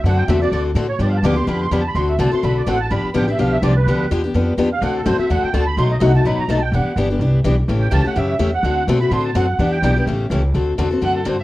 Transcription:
X:1
M:4/4
L:1/8
Q:"Swing" 1/4=251
K:Dmix
V:1 name="Accordion"
f g e d2 z2 ^c | (3d =f a d' c' b c' (3b a b | c' e a c' b d f a | b2 g e =f e d B- |
B2 z4 z =f | f A c e f g a b | c' ^d f a b _b a g | f2 z6 |
z g a f e3 f- | f2 z b c' a f2- | f g3 z4 | z8 |]
V:2 name="Violin"
z8 | z8 | z8 | z8 |
z8 | z8 | z8 | z8 |
z8 | z8 | z8 | z4 f A c z |]
V:3 name="Steel-string acoustic guitar"
[D,A,CFA] z [D,A,CFA] [CFA] [D,A,CFA] z [D,A,CFA] z | [D,=F,B,DG] z [D,F,B,DG] [B,G] [D,F,B,DG] z [D,F,B,DG] z | [D,A,CFA] z [D,A,CFA] [CFA] [D,A,CFA] z [D,A,CFA] z | [D,=F,B,DG] z [D,F,B,DG] [DG] [D,F,B,DG] z [D,F,B,DG] z |
[D,=F,B,DG] z [D,F,B,DG] [B,DG] [D,F,B,DG] z [D,F,B,DG] z | [D,A,CFA] z [D,A,CFA] [CFA] [D,A,CFA] z [D,A,CFA] z | [B,,F,A,^DF] z [B,,F,A,DF] [A,DF] [B,,F,A,DF] z [B,,F,A,DF] z | [E,B,DG] z [E,B,DG] [B,DG] [E,B,DG] z [E,B,DG] z |
[^C,E,A,^CG] z [C,E,A,CG] [A,CG] [C,E,A,CG] z [C,E,A,CG] z | [D,A,CFA] z [D,A,CFA] [CFA] [D,A,CFA] z [D,A,CFA] z | [E,B,DG] z [E,B,DG] [B,DG] [^C,E,A,^CG] z [C,E,A,CG] z | [D,A,CFA] z [D,A,CFA] [CFA] [D,A,CFA] z [D,A,CFA] z |]
V:4 name="Upright bass" clef=bass
F,,2 E,,2 D,,2 A,,2 | G,,2 D,,2 =F,,2 E,,2 | D,,2 C,, z B,,,2 A,,,2 | G,,, z A,,,2 B,,,2 C,,2 |
D,,2 E,,2 =F,,2 E,,2 | D,,2 F,, z E,, z D,,2 | B,,,2 C,,2 A,,, z B,,,2 | E,,, z G,,,2 C,,2 B,,,2 |
A,,,2 ^C,, z F,,2 E,,2 | D,,2 B,,2 A,,2 F,,2 | E,,2 B,,,2 A,,,2 ^C,,2 | D,,2 E,,2 F,,2 G,,2 |]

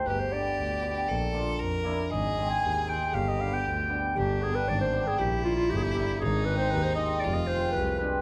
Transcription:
X:1
M:2/4
L:1/16
Q:1/4=117
K:none
V:1 name="Clarinet"
B c d6- | d4 z4 | _e3 _a3 g2 | f _e f g4- g |
G2 _A B d c2 A | G2 F F G/2 _A/2 G G2 | _A2 B c B c _e2 | d _e c2 B2 B2 |]
V:2 name="Violin"
G8 | A4 _B4 | _A8 | G6 z2 |
D8 | E8 | _E8 | F6 z2 |]
V:3 name="Hammered dulcimer"
z2 [B,DG] z3 [B,DG] z | z2 [_B,DF] z3 [B,DE] z | z2 [C_E_A] z3 [CEA] z | z2 [B,DG] z3 [B,DG] z |
z2 [B,DG] z3 [B,DG] z | z2 [_B,DF] z3 [B,DE] z | z2 [_A,C_E] z3 [A,CE] z | z2 [_A,CF] z3 [A,CD] z |]
V:4 name="Double bass" clef=bass
G,,,4 D,,4 | _B,,,4 F,,4 | _A,,,4 _E,,4 | G,,,4 D,,4 |
G,,,4 _A,,,4 | _B,,,4 G,,,4 | _A,,,4 _E,,4 | F,,,4 C,,4 |]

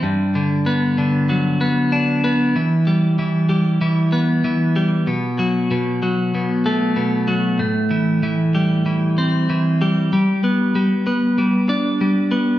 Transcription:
X:1
M:4/4
L:1/8
Q:1/4=95
K:Em
V:1 name="Clean electric guitar" clef=bass
G,, D, B, D, F, B, D B, | E, G, E, G, E, B, E, G, | B,, F, B,, F, B,, A, B,, F, | A,, E, E, G, E, C E, G, |
G, B, G, B, G, D G, B, |]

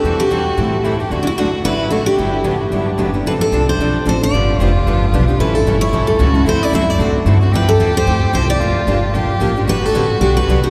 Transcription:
X:1
M:4/4
L:1/16
Q:"Swing" 1/4=224
K:G
V:1 name="Steel-string acoustic guitar"
A2 G12 z2 | z3/2 D/2 E2 F4 B4 A2 G2- | G12- G2 z2 | B2 A4 c6 c2 d2- |
d6 z8 z2 | B2 A4 ^c4 A6 | c2 d2 e2 d4 z6 | B2 A4 c6 c2 d2- |
d6 z8 z2 | B2 A4 z2 G2 B4 F2 |]
V:2 name="Violin"
F12 E2 G2 | F8 E4 F4 | E4 D2 F2 E2 D4 z2 | D16 |
=F16 | E12 F4 | E8 D4 E2 F2 | G16 |
=F8 G8 | F16 |]
V:3 name="Steel-string acoustic guitar"
[E,G,CEA]2 z2 [E,G,CEA]2 z2 [E,G,CEA]2 z2 [E,G,CEA]2 [CEA]2 | [D,F,A,DF]2 z2 [D,F,A,DF]2 z2 [D,F,A,DF]2 z2 [D,F,A,DF]2 [A,DF]2 | [D,F,B,DG]2 z2 [D,F,B,DG]2 z2 [D,F,B,DG]2 z2 [D,F,B,DG]2 [B,DG]2 | [=F,CDA]2 z2 [F,CDA]2 z2 [F,CDA]2 z2 [F,CDA]2 [CDA]2 |
[D,=F,B,DG]2 z2 [D,F,B,DG]2 z2 [D,F,B,DG]2 z2 [D,F,B,DG]2 [B,DG]2 | [E,G,^CEA]2 z2 [E,G,CEA]2 z2 [E,G,CEA]2 z2 [E,G,CEA]2 [CEA]2 | [D,A,CFA]2 z2 [D,A,CFA]2 z2 [D,A,CFA]2 z2 [D,A,CFA]2 [CFA]2 | [=F,CEA]2 z2 [F,CEA]2 z2 [F,CEA]2 z2 [F,CEA]2 [CEA]2 |
[=F,_B,DG]2 z2 [F,B,DG]2 z2 [F,B,DG]2 z2 [F,B,DG]2 [B,DG]2 | [D,F,B,DG]2 z2 [D,F,B,DG]2 z2 [D,F,B,DG]2 z2 [D,F,B,DG]2 [B,DG]2 |]
V:4 name="Steel-string acoustic guitar"
[E,G,CEA]2 z2 [E,G,CEA]2 z2 [E,G,CEA]2 z2 [E,G,CEA]2 z2 | [D,A,DFA]2 z2 [D,A,DFA]2 z2 [D,A,DFA]2 z2 [D,A,DFA]2 z2 | [D,F,B,DG]2 z2 [D,F,B,DG]2 z2 [D,F,B,DG]2 z2 [D,F,B,DG]2 z2 | [=F,CDA]2 z2 [F,CDA]2 z2 [F,CDA]2 z2 [F,CDA]2 z2 |
[D,=F,B,DG]2 z2 [D,F,B,DG]2 z2 [D,F,B,DG]2 z2 [D,F,B,DG]2 z2 | [E,G,^CEA]2 z2 [E,G,CEA]2 z2 [E,G,CEA]2 z2 [E,G,CEA]2 z2 | [D,A,CFA]2 z2 [D,A,CFA]2 z2 [D,A,CFA]2 z2 [D,A,CFA]2 z2 | [=F,CEA]2 z2 [F,CEA]2 z2 [F,CEA]2 z2 [F,CEA]2 z2 |
[=F,_B,DG]2 z2 [F,B,DG]2 z2 [F,B,DG]2 z2 [F,B,DG]2 z2 | [D,F,B,DG]2 z2 [D,F,B,DG]2 z2 [D,F,B,DG]2 z2 [D,F,B,DG]2 z2 |]
V:5 name="Upright bass" clef=bass
E,,8 A,,8 | D,,8 A,,,8 | G,,,4 A,,,4 G,,,4 F,,,4 | A,,,4 C,,4 B,,,4 A,,,4 |
G,,,4 =F,,,4 G,,,4 B,,,4 | A,,,4 G,,,4 A,,,4 ^C,,4 | D,,4 F,,4 A,,4 G,,4 | =F,,4 E,,4 D,,4 C,,4 |
=F,,,2 z2 G,,,4 _B,,,4 A,,,4 | G,,,4 A,,,4 B,,,4 C,,2 z2 |]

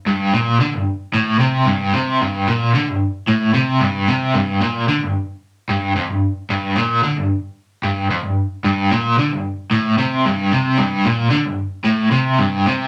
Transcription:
X:1
M:4/4
L:1/16
Q:1/4=112
K:Gm
V:1 name="Overdriven electric guitar" clef=bass
G,,2 B,,2 D, G,,2 z A,,2 C,2 G,,2 C,2 | G,,2 B,,2 D, G,,2 z A,,2 C,2 G,,2 C,2 | G,,2 B,,2 D, G,,2 z3 G,,2 F,, G,,2 z | G,,2 B,,2 D, G,,2 z3 G,,2 F,, G,,2 z |
G,,2 B,,2 D, G,,2 z A,,2 C,2 G,,2 C,2 | G,,2 B,,2 D, G,,2 z A,,2 C,2 G,,2 C,2 |]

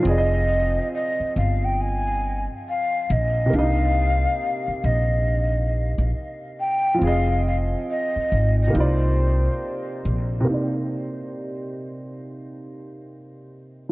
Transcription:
X:1
M:4/4
L:1/16
Q:"Swing 16ths" 1/4=69
K:Cm
V:1 name="Flute"
e4 e2 f g a3 z f2 e2 | f6 e6 z2 g2 | f2 f2 e3 e c6 z2 | z16 |]
V:2 name="Upright piano"
[F,CAde]16 | [C,B,DEe]16 | [F,CAe]8 [C,B,EFd]8 | [C,B,Ed]16 |]
V:3 name="Upright bass" clef=bass
F,,,4 z2 G,,,4- G,,, z3 B,,,2 | C,,4 z2 B,,,4- B,,, B,,, z4 | F,,,4 z2 A,,,2 C,,4 z2 B,,,2 | z16 |]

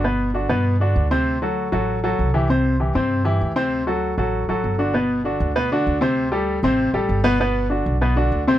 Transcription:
X:1
M:4/4
L:1/8
Q:1/4=196
K:G
V:1 name="Grand piano"
[B,,B,B]2 [D,DF] [B,,B,B]2 [D,DF]2 [C,Cc]- | [C,Cc] [F,FA]2 [F,FA]2 [F,FA]2 [E,EG] | [C,Cc]2 [E,EG] [C,Cc]2 [E,EG]2 [C,Cc]- | [C,Cc] [F,FA]2 [F,FA]2 [F,FA]2 [D,DF] |
[B,,B,B]2 [D,DF]2 [B,,B,B] [D,DF]2 [C,Cc]- | [C,Cc] [G,GA]2 [C,Cc]2 [G,GA]2 [B,,B,B] | [B,,B,B]2 [D,DF]2 [B,,B,B] [D,DF]2 [C,Cc] |]
V:2 name="Upright bass" clef=bass
G,,,3 G,,3 D,,2- | D,,3 A,,,3 C,,2- | C,,3 G,,3 D,,2- | D,,3 A,,,2 A,,, G,,,2- |
G,,,3 D,,3 D,,2- | D,,3 A,,,2 A,,, G,,,2- | G,,,3 B,,,3 D,,2 |]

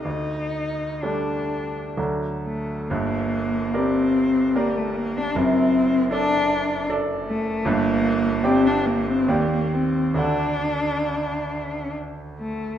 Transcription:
X:1
M:3/4
L:1/16
Q:1/4=70
K:Gm
V:1 name="Grand piano"
D,,4 [G,A,D]4 [D,,^F,A,D]4 | [G,,,G,,]4 [GBd]4 [GBd]4 | [^F,,,^F,,]4 [Ad]4 [Ad]4 | [G,,,G,,]4 [Gdg]4 [E,,Gdg]4 |
[D,,Ad^f]12 |]
V:2 name="Cello"
E4 D4 z2 A,2 | B,4 C4 B, A, B, D | C4 D4 z2 A,2 | B,4 C D B, C B,2 C2 |
D8 z2 A,2 |]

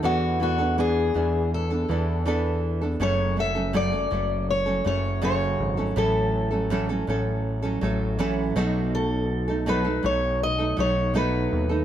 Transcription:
X:1
M:4/4
L:1/16
Q:1/4=81
K:A
V:1 name="Steel-string acoustic guitar"
F2 F2 G4 A6 z2 | c2 e2 d4 c2 c2 c4 | A8 z8 | A4 B2 c2 ^d2 c2 B4 |]
V:2 name="Nylon-string guitar"
[E,B,DA]2 [E,B,DA] [B,DA] [E,B,D]2 [E,B,D]3 [B,DA] [E,B,DA]2 [E,B,DA]3 [B,DA] | [F,,C,F,A,CA]2 [F,A,CA] [F,A,CA] [F,,C,F,A,CA] [F,A,CA] [F,A,A]3 [F,A,CA] [F,A,CA]2 [F,,C,F,A,CA]3 [F,A,CA] | [A,,E,F,A,CA]3 [F,A,CA] [A,,E,F,A,CA] [F,A,CA] [F,A,CA]3 [F,A,CA] [F,A,CA]2 [A,,E,F,A,CA]2 [B,,F,A,^DA]2- | [B,,F,A,^DA]3 [A,DA] [B,,F,A,DA] [A,DA] [F,A,DA]3 [A,DA] [F,A,DA]2 [B,,F,A,DA]3 [A,DA] |]
V:3 name="Analog synth bass" clef=bass
E,,6 E,,4 E,,6 | F,,,6 F,,,4 F,,,4 G,,,2 | A,,,6 A,,,4 A,,,4 B,,,2- | B,,,6 B,,,4 B,,,4 ^D,,2 |]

